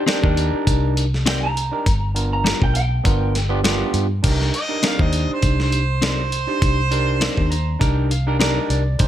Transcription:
0.00 0.94 G4 loud
0.07 0.26 C4 medium
0.07 0.19 D4 loud
0.07 0.26 D#4 medium
0.07 0.19 D#4 medium
0.07 0.19 G4 medium
0.07 0.27 A#4 loud
0.07 0.19 C5 loud
0.07 0.27 D5 medium
0.07 snare loud
0.07 closed hi-hat medium
0.23 0.49 D#2 medium
0.23 1.04 D4 medium
0.23 1.04 D#4 medium
0.23 1.05 G4 medium
0.23 1.05 A#4 loud
0.23 kick medium
0.37 closed hi-hat medium
0.53 muted fingered electric bass stroke soft
0.67 1.70 C2 loud
0.67 kick medium
0.67 closed hi-hat medium
0.97 closed hi-hat medium
1.14 snare soft
1.26 1.45 C4 medium
1.26 1.46 D#4 medium
1.26 1.46 A#4 medium
1.26 1.46 D5 medium
1.26 1.43 G5 loud
1.26 snare loud
1.26 closed hi-hat medium
1.43 2.30 A#5 medium
1.57 closed hi-hat medium
1.71 1.86 D4 medium
1.71 1.86 D#4 medium
1.71 1.86 G4 medium
1.71 1.87 A#4 medium
1.86 2.52 G1 loud
1.86 kick loud
1.86 closed hi-hat medium
2.14 2.76 B3 medium
2.14 2.77 D4 medium
2.14 2.77 F4 medium
2.14 2.77 A#4 medium
2.14 closed hi-hat medium
2.33 2.62 A#5 medium
2.44 2.64 G3 medium
2.44 2.65 B3 medium
2.44 2.65 F4 medium
2.44 2.65 A#4 medium
2.44 snare loud
2.44 closed hi-hat medium
2.62 2.99 B1 medium
2.62 2.75 G5 loud
2.62 kick medium
2.75 3.92 G5 loud
2.75 closed hi-hat medium
3.04 3.83 G1 medium
3.04 3.35 B3 medium
3.04 3.35 D4 medium
3.04 3.36 F4 medium
3.04 3.36 A#4 medium
3.04 kick medium
3.04 closed hi-hat medium
3.35 snare soft
3.35 closed hi-hat medium
3.49 3.60 B3 loud
3.49 3.60 D4 loud
3.49 3.60 F4 medium
3.49 3.60 G4 loud
3.63 3.84 G3 medium
3.63 4.06 B3 medium
3.63 3.84 B3 medium
3.63 4.06 D4 medium
3.63 4.06 F4 medium
3.63 3.84 F4 medium
3.63 4.06 G4 loud
3.63 3.84 A#4 medium
3.63 snare loud
3.63 closed hi-hat medium
3.94 4.20 G2 medium
3.94 closed hi-hat medium
4.23 4.50 C2 medium
4.23 4.54 D4 medium
4.23 4.54 D#4 medium
4.23 4.55 G4 medium
4.23 4.55 A#4 medium
4.23 kick loud
4.23 closed hi-hat medium
4.23 crash loud
4.41 snare soft
4.54 4.84 D#5 loud
4.54 closed hi-hat medium
4.69 4.79 D4 medium
4.69 4.79 D#4 medium
4.69 4.79 G4 medium
4.69 4.79 A#4 medium
4.82 5.02 C4 medium
4.82 4.94 D4 medium
4.82 4.94 D#4 medium
4.82 5.03 D#4 medium
4.82 4.95 G4 medium
4.82 4.95 A#4 medium
4.82 5.03 A#4 medium
4.82 5.03 D5 medium
4.82 snare loud
4.82 closed hi-hat medium
4.87 5.04 F5 medium
4.99 5.25 D#2 medium
4.99 5.80 D4 medium
4.99 5.80 D#4 medium
4.99 5.80 G4 medium
4.99 5.80 C5 medium
4.99 kick medium
5.03 5.30 D#5 medium
5.13 closed hi-hat medium
5.29 muted fingered electric bass stroke soft
5.33 5.61 C5 medium
5.42 6.46 C2 loud
5.42 kick medium
5.42 closed hi-hat medium
5.60 6.03 C5 medium
5.60 snare soft
5.72 closed hi-hat medium
6.02 6.21 C4 medium
6.02 6.22 D#4 medium
6.02 6.22 A#4 medium
6.02 6.22 D5 medium
6.02 snare loud
6.02 closed hi-hat medium
6.06 7.79 C5 loud
6.32 closed hi-hat medium
6.47 6.78 D4 medium
6.47 6.79 D#4 medium
6.47 6.79 G4 medium
6.47 6.79 C5 medium
6.62 7.27 C2 medium
6.62 kick loud
6.62 closed hi-hat medium
6.91 7.52 D4 medium
6.91 7.53 D#4 medium
6.91 7.53 G4 medium
6.91 7.53 A#4 medium
6.91 closed hi-hat medium
7.21 7.40 C4 medium
7.21 7.41 D#4 medium
7.21 7.41 A#4 medium
7.21 7.41 D5 loud
7.21 snare loud
7.21 closed hi-hat medium
7.37 7.75 D#2 medium
7.37 kick medium
7.51 7.79 A#5 medium
7.51 closed hi-hat medium
7.79 8.58 C2 loud
7.79 8.11 D4 medium
7.79 8.11 D#4 medium
7.79 8.11 G4 medium
7.79 8.11 A#4 loud
7.79 8.08 G5 medium
7.79 kick medium
7.79 closed hi-hat medium
8.11 8.39 F5 medium
8.11 closed hi-hat medium
8.27 8.36 D4 medium
8.27 8.36 D#4 medium
8.27 8.37 G4 medium
8.27 8.37 A#4 loud
8.40 8.59 C4 medium
8.40 8.82 D4 medium
8.40 8.82 D#4 medium
8.40 8.59 D#4 medium
8.40 8.82 G4 medium
8.40 8.82 A#4 loud
8.40 8.60 A#4 medium
8.40 8.60 D5 medium
8.40 8.68 D#5 medium
8.40 snare loud
8.40 closed hi-hat medium
8.70 8.96 C2 medium
8.70 8.98 D5 medium
8.70 closed hi-hat medium
8.99 9.08 C2 medium
8.99 9.08 D4 medium
8.99 9.08 D#4 medium
8.99 9.08 G4 medium
8.99 9.08 C5 medium
8.99 kick loud
8.99 closed hi-hat medium

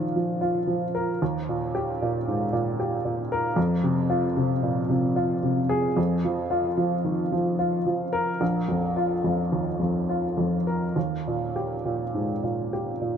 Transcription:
0.00 1.16 A#2 medium
0.00 0.15 D#3 soft
0.00 0.16 F3 soft
0.00 0.41 F4 soft
0.16 0.58 F3 soft
0.41 0.84 F4 soft
0.67 1.10 F3 soft
0.95 1.21 A#4 medium
1.22 3.53 D#2 medium
1.49 1.91 A#2 soft
1.75 2.16 G4 soft
2.02 2.43 A#2 soft
2.28 2.53 G#2 soft
2.53 2.94 A#2 soft
2.80 3.21 G4 soft
3.05 3.46 A#2 soft
3.32 3.57 A#4 medium
3.56 5.93 F2 medium
3.83 4.25 C3 soft
4.10 4.52 F4 soft
4.37 4.79 C3 soft
4.63 4.89 A#2 soft
4.89 5.33 C3 soft
5.16 5.60 F4 soft
5.43 5.87 C3 soft
5.69 5.97 G#4 medium
5.97 8.36 F2 medium
6.25 6.68 F3 soft
6.51 6.94 F4 soft
6.77 7.21 F3 soft
7.05 7.32 D#3 soft
7.32 7.76 F3 soft
7.59 8.02 F4 soft
7.86 8.30 F3 soft
8.13 8.40 A#4 medium
8.41 10.92 A#1 medium
8.68 9.12 F2 soft
8.97 9.40 F4 soft
9.24 9.68 F2 soft
9.52 9.80 D#2 soft
9.80 10.25 F2 soft
10.09 10.55 F4 soft
10.37 10.84 F2 soft
10.67 10.96 A#4 soft
10.96 13.17 D#2 soft
11.27 11.74 A#2 soft
11.56 12.03 G4 soft
11.85 12.32 A#2 soft
12.14 12.43 G#2 soft
12.44 12.90 A#2 soft
12.73 13.17 G4 soft
13.01 13.17 A#2 soft

